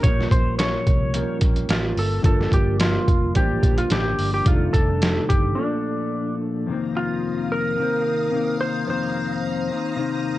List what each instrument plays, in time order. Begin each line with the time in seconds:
0.01 fingered electric bass A#1, clean electric guitar A#2 F3, tine electric piano G3 C#4, electric slide guitar C#5, kick, closed hi-hat
0.05 clean electric guitar A#3 C#4 G4, tine electric piano F4 A#4
0.20 snare
0.31 fingered electric bass A#1, electric slide guitar C5, kick, closed hi-hat
0.59 electric slide guitar C#5, snare, closed hi-hat
0.87 fingered electric bass C2, kick, closed hi-hat
1.12 clean electric guitar A#2 F3 A#3 C#4 G4, tine electric piano G3 C#4 F4, closed hi-hat
1.16 tine electric piano A#4
1.39 fingered electric bass A#1, clean electric guitar A#3 C#4 G4, kick, closed hi-hat
1.56 closed hi-hat
1.69 fingered electric bass A1, electric slide guitar F4, snare, closed hi-hat
1.97 fingered electric bass G1, electric slide guitar A4, open hi-hat
2.22 fingered electric bass G1, clean electric guitar G2 D3 F3, tine electric piano G3 D4, electric slide guitar A4, kick, closed hi-hat
2.26 clean electric guitar A#3 D4, tine electric piano F4 A#4
2.41 snare
2.52 fingered electric bass G1, electric slide guitar G4, kick, closed hi-hat
2.80 electric slide guitar F4, snare, closed hi-hat
3.08 fingered electric bass F1, kick, closed hi-hat
3.34 fingered electric bass A1, clean electric guitar G2 D3 F3, tine electric piano G3 D4 F4 C5, electric slide guitar G4, kick, closed hi-hat
3.38 clean electric guitar A#3 D4
3.63 fingered electric bass A#1, kick, closed hi-hat
3.78 electric slide guitar F4, closed hi-hat
3.90 fingered electric bass A1, electric slide guitar G4, snare, closed hi-hat
4.19 fingered electric bass G1, open hi-hat
4.34 electric slide guitar G4
4.45 fingered electric bass F1, clean electric guitar F2 C3 D#3, tine electric piano G3 D4 D#4 G#4, electric slide guitar F4, kick, closed hi-hat
4.50 clean electric guitar A3 D4
4.55 tine electric piano A4
4.73 fingered electric bass F1, electric slide guitar A4, kick, closed hi-hat
5.02 snare, closed hi-hat
5.29 fingered electric bass G1, electric slide guitar G4, kick, closed hi-hat
5.55 clean electric guitar A#2 F3, tine electric piano F3 A#3 D4 A4, electric slide guitar D4
5.60 clean electric guitar A3 D4
6.66 clean electric guitar F2 C3 D#3, string machine F5 A#5 D#6
6.71 clean electric guitar A#3 C4
6.97 electric slide guitar F4
7.52 electric slide guitar A#4
7.77 clean electric guitar C3 D#3 A#3 C4
8.31 clean electric guitar C3 D#3 A#3 C4
8.61 electric slide guitar C5
8.86 clean electric guitar F2 C3 D#3 A#3 C4
8.90 electric slide guitar C5
9.69 clean electric guitar D#3 A#3 C4
9.96 clean electric guitar C3 D#3 A#3 C4